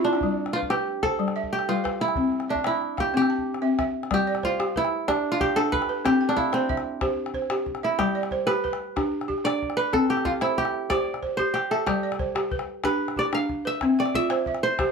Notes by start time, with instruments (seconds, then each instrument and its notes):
Already playing: kora E4
0.00 balafon F4
0.04 kora D4, balafon E4, calabash click
0.13 balafon D4, calabash click
0.21 balafon G3, calabash thump
0.46 calabash click
0.53 kora F4, balafon B4
0.62 calabash thump
0.70 kora G4, balafon B4, calabash click
0.87 calabash click
1.03 kora A4, balafon C5, calabash thump, calabash click
1.19 balafon G3
1.28 calabash click
1.36 balafon E5, calabash click
1.43 calabash thump
1.53 kora G4
1.59 calabash click
1.69 balafon G3 B4, kora F4
1.76 calabash click
1.84 balafon B4, calabash thump, calabash click
2.00 kora E4, calabash click
2.08 calabash click
2.15 balafon C4, calabash thump
2.32 calabash click
2.40 calabash click
2.48 kora D4, balafon E5, calabash click
2.55 calabash thump, calabash click
2.64 kora E4, balafon E5, calabash click
2.82 calabash click
2.97 kora G4, balafon F5, calabash thump, calabash click
3.14 balafon C4, kora G4
3.22 calabash click
3.30 balafon A5, calabash click
3.38 calabash thump
3.54 calabash click
3.62 balafon C4 E5
3.79 balafon E5, calabash thump, calabash click
4.03 calabash click
4.11 balafon G3, kora G4, calabash thump, calabash click
4.27 balafon D5
4.35 calabash click
4.43 kora F4, balafon C5, calabash thump
4.60 balafon G4, calabash click
4.76 kora E4, balafon B4, calabash thump
4.85 calabash click
5.08 kora D4, balafon D4 G4, calabash thump, calabash click
5.32 kora F4
5.40 balafon G4, kora G4, calabash thump
5.49 calabash click
5.56 balafon D4, kora A4, calabash click
5.72 kora B4, calabash thump
5.82 calabash click
5.89 balafon B4
6.05 balafon C4, kora G4, calabash thump, calabash click
6.21 balafon G5
6.29 kora D4, calabash click
6.37 kora E4, balafon F5, calabash thump
6.52 kora C4, balafon C5, calabash click
6.69 balafon E5, calabash thump
6.77 calabash click
7.01 balafon G4 C5, calabash thump, calabash click
7.26 calabash click
7.34 balafon C5, calabash thump
7.42 calabash click
7.50 balafon G4, calabash click
7.66 calabash thump
7.75 calabash click
7.83 kora E4, balafon E5
7.99 balafon G3, kora G4, calabash thump, calabash click
8.15 balafon D5
8.23 calabash click
8.31 balafon C5, calabash thump
8.47 balafon G4, kora B4, calabash click
8.64 balafon B4, calabash thump
8.73 calabash click
8.96 balafon D4 G4, calabash thump, calabash click
9.21 calabash click
9.28 balafon G4, calabash thump
9.38 calabash click
9.44 balafon D4, kora D5, calabash click
9.62 calabash thump
9.70 calabash click
9.77 kora B4, balafon B4
9.93 balafon C4, kora A4, calabash thump, calabash click
10.09 kora G4, calabash click
10.17 calabash click
10.25 kora F4, balafon F5, calabash thump
10.41 kora E4, balafon C5, calabash click
10.58 kora G4, balafon E5, calabash thump
10.65 calabash click
10.74 calabash click
10.90 balafon G4 C5, kora D5, calabash thump, calabash click
11.14 calabash click
11.23 balafon C5, calabash thump
11.37 balafon G4, kora C5, calabash thump
11.54 kora G4, calabash click
11.71 kora A4, balafon E5, calabash click
11.86 balafon G3, kora G4, calabash thump, calabash click
12.03 balafon D5
12.12 calabash click
12.19 balafon C5, calabash thump
12.35 balafon G4, calabash click
12.51 balafon B4, calabash thump
12.59 calabash click
12.84 balafon D4 G4, kora B4, calabash thump, calabash click
13.08 calabash click
13.16 balafon G4, kora D5, calabash thump
13.25 calabash click
13.33 balafon D4, kora F5, calabash click
13.49 calabash thump
13.65 balafon B4, kora E5
13.81 balafon C4, calabash thump, calabash click
13.99 kora D5, balafon G5
14.06 calabash click
14.14 balafon F4, kora E5, calabash thump
14.30 balafon C5, calabash click
14.46 balafon E5, calabash thump
14.55 calabash click
14.63 kora C5
14.79 balafon G4 C5, calabash thump, calabash click